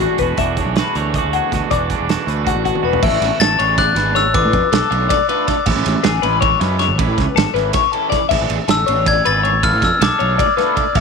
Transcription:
Already playing: E3 A3 D4
0.00 E3 B3 D4 F#4 G#4
0.18 E1 B2 E3 B3 D4 G#4 B4, kick, closed hi-hat
0.22 F#4
0.37 E1 E3 B3 D4 G#4 E5, kick, closed hi-hat
0.41 D4 F#4
0.56 B3 D4 G#4 C#5, kick, closed hi-hat
0.61 D4
0.65 B1
0.76 E3 B3 D4 F#4 G#4 B4, snare, closed hi-hat
0.95 D2 E3 A3 B3 D4 G#4 C#5, closed hi-hat
1.14 E3 B3 D4 G#4 D5, kick, closed hi-hat
1.18 F#4
1.24 D2
1.33 E3 B3 D4 F#4 G#4 F#5, closed hi-hat
1.51 D2 B2 E3 B3 D4 F#4 G#4, kick, snare, closed hi-hat
1.69 E1 E3 B3 D4 F#4 G#4 D5, kick, closed hi-hat
1.89 B3 D4 G#4, kick, closed hi-hat
2.00 E1
2.07 E3 B3 D4 F#4 G#4 A4, snare, closed hi-hat
2.26 D2 E3 A3 B3 D4 G#4 B4, closed hi-hat
2.45 E3 B3 D4 F#4 G#4, kick, closed hi-hat
2.55 A1
2.64 E3 B3 D4 F#4 G#4, kick, closed hi-hat
2.75 high tom
2.82 E1 B2 E3 B3 D4 F#4 G#4 B4
2.93 floor tom
3.02 A1 E3 B3 D4 G#4 E5, kick, crash
3.12 A1
3.22 A1, snare, ride
3.40 A1 A4 A6, snare, ride
3.59 A1 E3 B3 D4 G#4 C#5, ride
3.78 D5 F#6, kick, snare, ride
3.95 G#1 E3 B3 D4 G#4 B4, snare, ride
4.15 C#5 E6, snare, ride
4.26 A1
4.34 A1 D3 A3 D4 F4 B4 D6, kick, ride
4.45 A2
4.53 F2, kick, ride
4.72 B1 A4, snare, ride
4.91 B1 D3 A3 D4 F4 C#5, ride
5.09 D5, kick, snare, ride
5.29 D3 A3 D4 F4 B4, ride
5.48 D5, kick, snare, ride
5.66 A1 C#3 G#3 C#4 E4 E5, kick, crash
5.76 A1
5.86 A1, snare, ride
6.04 A1 G#4, snare, ride
6.22 A1 C#3 G#3 C#4 E4 B4, ride
6.41 C#5, kick, ride
6.60 F#2 C#3 G#3 C#4 E4 B4, snare, ride
6.79 C#5, snare, ride
6.88 A1
6.98 A1 E3 A3 C#4 E4 B4, kick, ride
7.07 A2
7.18 C#2, kick, snare, ride
7.36 G#1 A4, snare, ride
7.54 G#1 E3 A3 C#4 E4 B4, snare, ride
7.73 C#5, kick, snare, ride
7.92 E3 A3 C#4 E4 A4, ride
8.10 D5, kick, snare, ride
8.29 A1 E3 B3 D4 G#4 E5, kick, crash
8.41 A1
8.50 A1, ride
8.68 A1 A4 E6, snare, ride
8.86 A1 E3 B3 D4 G#4 C#5, ride
9.06 D5 G#6, kick, ride
9.25 G#1 E3 B3 D4 G#4 B4 A6, ride
9.43 C#5, ride
9.54 A1
9.63 A1 A3 D4 F4 A4 B4 F6, kick, ride
9.73 A2
9.82 F2 E6, kick, snare, ride
10.01 B1 A4 D6, snare, ride
10.19 B1 A3 D4 F4 A4 C#5, ride
10.38 D5, kick, ride
10.57 A3 D4 F4 A4 B4, snare, ride
10.76 D5, kick, ride
10.95 A1 E3 G#3 C#4 G#4 E5, kick, crash

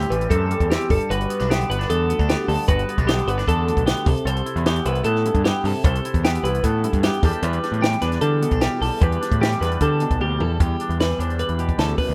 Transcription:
Already playing: A2 G3 C4 E4 G4
0.02 closed hi-hat
0.10 A1 E3 G3 B4, closed hi-hat
0.21 closed hi-hat
0.30 F#2 C4 A4, kick, closed hi-hat
0.51 G3, closed hi-hat
0.60 E2, kick, closed hi-hat
0.71 E2 C4 G4, snare, closed hi-hat
0.81 closed hi-hat
0.90 G1 G2 A4, kick, open hi-hat
1.00 closed hi-hat
1.10 G1 F#4 B4, closed hi-hat
1.21 closed hi-hat
1.30 B3, closed hi-hat
1.40 B1 D4, snare, closed hi-hat
1.49 D3 B3 G4, snare, closed hi-hat
1.61 closed hi-hat
1.70 G1 B3 B4, closed hi-hat
1.79 D4, snare, closed hi-hat
1.90 E2 B3 A4, closed hi-hat
2.09 D2 B3, closed hi-hat
2.19 D2 D4, kick, closed hi-hat
2.29 B3 G4, snare, closed hi-hat
2.48 D2 G2 A4, open hi-hat
2.68 G1 F#4 B4, kick, closed hi-hat
2.79 closed hi-hat
2.89 B3, closed hi-hat
2.98 B1 D4, kick, closed hi-hat
3.07 D3 B3 G4, snare, closed hi-hat
3.19 closed hi-hat
3.26 G1 B3 B4, closed hi-hat
3.38 D4, snare, closed hi-hat
3.48 E2 B3 A4, kick, closed hi-hat
3.67 D2 D4, closed hi-hat
3.77 B1, kick, closed hi-hat
3.87 B3 G4, snare, closed hi-hat
3.97 closed hi-hat
4.06 C2 C3 A4, kick, open hi-hat
4.17 closed hi-hat
4.25 C2 A4 C5, closed hi-hat
4.37 closed hi-hat
4.46 E4, closed hi-hat
4.56 E2, closed hi-hat
4.66 E3 B3 G4, snare, closed hi-hat
4.76 closed hi-hat
4.85 C2 E4 B4, closed hi-hat
4.95 closed hi-hat
5.04 A2 B3 A4, closed hi-hat
5.15 snare
5.25 G2 E4, closed hi-hat
5.34 G2, kick, closed hi-hat
5.44 B3 G4, snare, closed hi-hat
5.64 G2 C3 A4, open hi-hat
5.84 C2 A4 C5, kick, closed hi-hat
5.95 closed hi-hat
6.05 E4, closed hi-hat
6.14 E2, kick, closed hi-hat
6.24 E3 B3 G4, snare, closed hi-hat
6.35 closed hi-hat
6.43 C2 E4 B4, closed hi-hat
6.55 closed hi-hat
6.63 A2 B3 A4, kick, closed hi-hat
6.84 G2 E4, closed hi-hat
6.93 G2, kick, closed hi-hat
7.03 B3 G4, snare, closed hi-hat
7.13 closed hi-hat
7.23 E2 E3 G3 D4 G4 A4, kick, open hi-hat
7.33 closed hi-hat
7.42 E2 G4 B4, closed hi-hat
7.53 closed hi-hat
7.63 D4, snare, closed hi-hat
7.72 A2, closed hi-hat
7.82 E3 G3 G4, snare, closed hi-hat
7.93 closed hi-hat
8.02 E2 D4 B4, snare, closed hi-hat
8.12 snare, closed hi-hat
8.21 D3 G3 A4, closed hi-hat
8.42 B2 B3, closed hi-hat
8.51 B1 D4, kick, closed hi-hat
8.61 G3 G4, snare, closed hi-hat
8.81 B1 E2 A4, open hi-hat
9.01 E2 G4 B4, kick, closed hi-hat
9.12 closed hi-hat
9.21 D4, snare, closed hi-hat
9.31 A2, kick, closed hi-hat
9.40 E3 G3 G4, snare, closed hi-hat
9.53 closed hi-hat
9.61 E2 D4 B4, snare, closed hi-hat
9.71 closed hi-hat
9.81 D3 G3 A4, kick, closed hi-hat
10.00 B2 D4, closed hi-hat
10.10 B1, kick, closed hi-hat
10.20 D2 G3 G4, high tom
10.40 E2 A4, floor tom
10.60 E2 G3 G4, kick, closed hi-hat
10.80 D4, closed hi-hat
10.89 E2, closed hi-hat
11.00 E3 G3 B4, snare, closed hi-hat
11.11 snare, closed hi-hat
11.19 E2 D4 C5, closed hi-hat
11.30 closed hi-hat
11.39 B4, closed hi-hat
11.49 E2, closed hi-hat
11.59 B2 G4, closed hi-hat
11.69 kick, closed hi-hat
11.78 D2 E2 A4, snare, closed hi-hat
11.88 closed hi-hat
11.98 F#2 B4, kick, open hi-hat
12.09 D2

